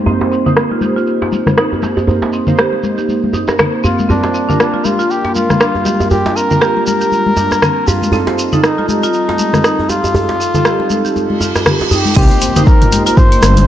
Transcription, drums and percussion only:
0.06 djembe tone medium
0.06 djembe bass medium
0.06 shekere soft
0.20 muted conga soft
0.20 djembe slap loud
0.32 shekere medium
0.46 muted conga soft
0.46 low conga loud
0.46 shekere soft
0.57 cross-stick loud
0.57 shekere soft
0.71 muted conga medium
0.81 high conga medium
0.81 shekere medium
0.96 muted conga soft
0.96 shekere medium
1.07 shekere soft
1.22 djembe slap medium
1.32 muted conga soft
1.32 high conga medium
1.32 shekere loud
1.47 cross-stick medium
1.47 high conga loud
1.47 low conga loud
1.47 shekere medium
1.57 cross-stick loud
1.57 muted conga soft
1.57 shekere soft
1.72 djembe tone medium
1.82 djembe slap medium
1.82 muted conga medium
1.82 high conga medium
1.82 shekere medium
1.97 djembe tone medium
1.97 shekere soft
2.07 djembe tone medium
2.07 djembe bass medium
2.07 shekere soft
2.22 djembe slap loud
2.22 muted conga soft
2.33 shekere medium
2.47 muted conga soft
2.47 low conga loud
2.47 shekere medium
2.58 cross-stick loud
2.58 shekere soft
2.73 muted conga medium
2.83 high conga medium
2.83 shekere medium
2.98 muted conga soft
2.98 shekere medium
3.09 high conga medium
3.09 shekere soft
3.24 high conga medium
3.33 muted conga soft
3.33 djembe tone medium
3.33 high conga medium
3.33 shekere medium
3.48 cross-stick medium
3.48 djembe slap medium
3.48 djembe tone medium
3.48 shekere medium
3.59 cross-stick loud
3.59 muted conga soft
3.59 low conga medium
3.59 shekere soft
3.84 muted conga soft
3.84 djembe bass medium
3.84 shekere loud
3.99 high conga medium
3.99 shekere medium
4.10 djembe tone medium
4.10 djembe bass medium
4.10 shekere soft
4.23 djembe slap medium
4.23 muted conga soft
4.34 shekere medium
4.50 muted conga soft
4.50 low conga loud
4.50 shekere medium
4.60 cross-stick loud
4.60 shekere soft
4.74 muted conga soft
4.85 high conga medium
4.85 shekere medium
5.00 muted conga soft
5.00 shekere soft
5.10 shekere soft
5.25 djembe slap medium
5.35 muted conga medium
5.35 high conga medium
5.35 shekere medium
5.50 cross-stick medium
5.50 high conga loud
5.50 low conga medium
5.50 shekere medium
5.61 cross-stick loud
5.61 muted conga soft
5.61 shekere soft
5.75 djembe tone medium
5.85 djembe slap medium
5.85 muted conga soft
5.85 high conga medium
5.85 shekere medium
6.00 djembe tone medium
6.00 shekere medium
6.11 djembe tone medium
6.11 djembe bass medium
6.11 shekere soft
6.26 muted conga soft
6.26 djembe slap loud
6.37 shekere medium
6.51 muted conga soft
6.51 low conga loud
6.51 shekere medium
6.62 cross-stick medium
6.62 shekere soft
6.77 muted conga medium
6.87 high conga medium
6.87 shekere medium
7.01 muted conga soft
7.01 shekere soft
7.12 high conga medium
7.12 shekere soft
7.26 high conga medium
7.37 muted conga medium
7.37 djembe tone medium
7.37 high conga medium
7.37 shekere medium
7.51 cross-stick medium
7.51 djembe tone medium
7.51 shekere soft
7.62 cross-stick medium
7.62 muted conga soft
7.62 low conga medium
7.62 shekere soft
7.88 muted conga soft
7.88 djembe bass medium
7.88 shekere medium
8.02 high conga medium
8.02 shekere soft
8.12 djembe tone medium
8.12 djembe bass medium
8.12 shekere soft
8.27 djembe slap medium
8.27 muted conga soft
8.39 shekere medium
8.52 muted conga soft
8.52 low conga medium
8.52 shekere soft
8.64 cross-stick medium
8.64 shekere soft
8.79 muted conga medium
8.89 high conga medium
8.89 shekere medium
9.03 muted conga soft
9.03 shekere soft
9.14 shekere soft
9.29 djembe slap medium
9.39 muted conga soft
9.39 high conga medium
9.39 shekere medium
9.53 cross-stick medium
9.53 high conga loud
9.53 low conga medium
9.53 shekere soft
9.64 cross-stick medium
9.64 muted conga soft
9.64 shekere soft
9.79 djembe tone medium
9.89 djembe slap medium
9.89 muted conga medium
9.89 high conga medium
9.89 shekere medium
10.04 djembe tone medium
10.04 shekere soft
10.14 high conga medium
10.14 djembe tone medium
10.14 djembe bass loud
10.14 shekere soft
10.29 muted conga medium
10.29 djembe slap loud
10.41 shekere medium
10.54 muted conga soft
10.54 low conga loud
10.54 shekere soft
10.65 cross-stick medium
10.65 shekere soft
10.80 muted conga medium
10.90 high conga medium
10.90 shekere medium
11.05 muted conga soft
11.05 shekere soft
11.16 high conga medium
11.16 djembe tone medium
11.16 shekere soft
11.30 high conga medium
11.41 muted conga medium
11.41 djembe tone medium
11.41 high conga medium
11.41 shekere medium
11.55 cross-stick medium
11.55 djembe slap medium
11.55 djembe tone medium
11.55 shekere soft
11.66 cross-stick loud
11.66 muted conga soft
11.66 low conga medium
11.66 shekere soft
11.81 djembe slap medium
11.81 djembe tone medium
11.91 muted conga medium
11.91 djembe bass loud
11.91 shekere medium
12.05 high conga medium
12.05 shekere medium
12.16 kick loud
12.16 crash loud
12.16 shekere soft
12.31 closed hi-hat soft
12.31 muted conga medium
12.41 open hi-hat loud
12.41 shekere medium
12.56 closed hi-hat medium
12.56 muted conga soft
12.56 low conga loud
12.56 shekere medium
12.67 kick loud
12.67 shekere soft
12.82 closed hi-hat soft
12.82 mid tom medium
12.82 muted conga medium
12.92 open hi-hat medium
12.92 high conga medium
12.92 shekere medium
13.07 closed hi-hat medium
13.07 muted conga soft
13.07 shekere medium
13.17 kick loud
13.17 mid tom medium
13.17 shekere soft
13.32 closed hi-hat medium
13.41 cross-stick medium
13.41 open hi-hat medium
13.41 muted conga medium
13.41 high conga medium
13.41 shekere medium
13.57 closed hi-hat medium
13.57 high conga loud
13.57 low conga loud
13.57 shekere medium

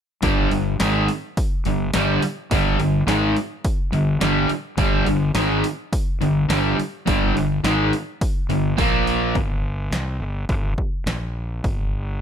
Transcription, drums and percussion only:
0.22 kick loud
0.22 open hi-hat medium
0.51 open hi-hat medium
0.80 snare loud
0.80 open hi-hat medium
1.08 open hi-hat medium
1.37 kick loud
1.37 open hi-hat medium
1.65 open hi-hat medium
1.94 snare loud
1.94 open hi-hat medium
2.22 open hi-hat medium
2.51 kick loud
2.51 open hi-hat medium
2.80 open hi-hat medium
3.08 snare medium
3.08 open hi-hat medium
3.37 open hi-hat medium
3.65 kick loud
3.65 open hi-hat medium
3.93 open hi-hat soft
4.21 snare loud
4.21 open hi-hat medium
4.49 open hi-hat medium
4.78 kick loud
4.78 open hi-hat medium
5.07 open hi-hat medium
5.35 snare loud
5.35 open hi-hat medium
5.64 open hi-hat medium
5.93 kick loud
5.93 open hi-hat medium
6.22 open hi-hat medium
6.50 snare loud
6.50 open hi-hat medium
6.80 open hi-hat medium
7.07 kick loud
7.07 open hi-hat medium
7.37 open hi-hat medium
7.64 snare loud
7.64 open hi-hat medium
7.93 open hi-hat medium
8.21 kick loud
8.21 open hi-hat medium
8.50 open hi-hat medium
8.78 kick medium
8.78 open hi-hat medium
9.07 open hi-hat medium
9.35 kick loud
9.35 open hi-hat soft
9.92 snare loud
9.92 open hi-hat soft
10.49 kick medium
10.49 open hi-hat soft
10.78 kick medium
11.07 snare loud
11.07 open hi-hat soft
11.64 kick loud
11.64 open hi-hat soft

